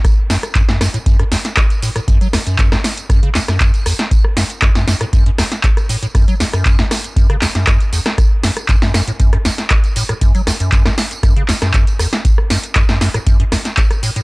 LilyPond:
<<
  \new Staff \with { instrumentName = "Acid bass" } { \clef bass \time 4/4 \key fis \minor \tempo 4 = 118 r8 fis,16 r16 fis,16 fis,16 fis,16 a,16 fis,16 fis,16 e,16 r8. a,16 a,16 | fis,16 fis16 e,16 fis,16 fis,16 fis,16 r8 fis,16 cis16 e,16 fis,16 fis,16 r16 e,16 r16 | r8 fis,16 r16 fis,16 fis,16 fis,16 a,16 fis,16 fis,16 e,16 r8. a,16 a,16 | fis,16 fis16 e,16 fis,16 fis,16 fis,16 r8 fis,16 cis16 e,16 fis,16 fis,16 r16 e,16 r16 |
r8 fis,16 r16 fis,16 fis,16 fis,16 a,16 fis,16 fis,16 e,16 r8. a,16 a,16 | fis,16 fis16 e,16 fis,16 fis,16 fis,16 r8 fis,16 cis16 e,16 fis,16 r8 e,16 r16 | r8 fis,16 r16 fis,16 fis,16 fis,16 a,16 fis,16 fis,16 e,16 r8. a,16 a,16 | }
  \new DrumStaff \with { instrumentName = "Drums" } \drummode { \time 4/4 <hh bd ss tamb>8 <hho sn tamb>16 <hh ss tamb>16 <hc hh bd tamb>16 <sn tamb>16 <hho ss sn tamb>16 <hh tamb>16 <hh bd tamb>16 <hh ss>16 <hho sn tamb>16 <hh sn tamb>16 <hc hh bd ss tamb>16 <hh tamb>16 <hho tamb>16 <hh ss tamb>16 | <hh bd tamb>16 <hh tamb>16 <hho ss sn tamb>16 <hh tamb>16 <hc hh bd tamb>16 <ss sn tamb>16 <hho sn tamb>16 <hh tamb>16 <hh bd ss tamb>16 hh16 <hc hho sn tamb>16 <hh ss sn tamb>16 <hc hh bd tamb>16 <hh tamb>16 <hho ss tamb>16 <hh sn tamb>16 | <hh bd tamb>16 ss16 <hho sn tamb>16 <hh tamb>16 <hc hh bd ss tamb>16 <sn tamb>16 <hho sn tamb>16 <hh ss tamb>16 <hh bd tamb>16 hh16 <hho ss sn tamb>16 <hh sn tamb>16 <hc hh bd tamb>16 <hh ss tamb>16 <hho tamb>16 <hh tamb>16 | <hh bd ss tamb>16 <hh tamb>16 <hho sn tamb>16 <hh ss tamb>16 <hc hh bd tamb>16 <sn tamb>16 <hho ss sn tamb>16 <hh tamb>16 <hh bd tamb>16 <hh ss>16 <hc hho sn tamb>16 <hh sn tamb>16 <hc hh bd ss tamb>16 <hh tamb>16 <hho tamb>16 <hh ss sn tamb>16 |
<hh bd ss tamb>8 <hho sn tamb>16 <hh ss tamb>16 <hc hh bd tamb>16 <sn tamb>16 <hho ss sn tamb>16 <hh tamb>16 <hh bd tamb>16 <hh ss>16 <hho sn tamb>16 <hh sn tamb>16 <hc hh bd ss tamb>16 <hh tamb>16 <hho tamb>16 <hh ss>16 | <hh bd tamb>16 <hh tamb>16 <hho ss sn tamb>16 <hh tamb>16 <hc hh bd tamb>16 <ss sn tamb>16 <hho sn tamb>16 <hh tamb>16 <hh bd ss tamb>16 hh16 <hc hho sn tamb>16 <hh ss sn tamb>16 <hc hh bd tamb>16 <hh tamb>16 <hho ss tamb>16 <hh sn tamb>16 | <hh bd tamb>16 ss16 <hho sn tamb>16 <hh tamb>16 <hc hh bd ss tamb>16 <sn tamb>16 <hho sn tamb>16 <hh ss tamb>16 <hh bd tamb>16 hh16 <hho ss sn tamb>16 <hh sn tamb>16 <hc hh bd tamb>16 <hh ss tamb>16 <hho tamb>16 <hh tamb>16 | }
>>